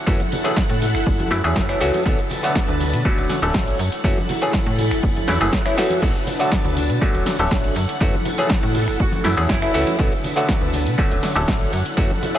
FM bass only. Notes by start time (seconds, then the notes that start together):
0.07 F#2
0.69 A2
0.94 F#1
1.07 F#1
1.32 F#2
1.44 E2
1.56 F#1
1.81 C#2
2.06 B1
2.68 D2
2.93 B2
3.05 D1
3.18 D1
3.42 D1
3.55 A1
3.79 F#2
4.04 F#2
4.66 A2
4.91 F#1
5.03 F#1
5.28 E2
5.40 F#1
6.02 B1
6.64 D2
6.89 B2
7.01 D1
7.14 D1
7.39 D1
7.51 A1
7.76 F#2
8.01 F#2
8.63 A2
8.88 F#1
9.00 F#1
9.25 F#2
9.37 E2
9.49 F#1
9.75 C#2
9.99 B1
10.61 D2
10.87 B2
10.98 D1
11.11 D1
11.36 D1
11.48 A1
11.73 F#2
11.97 F#2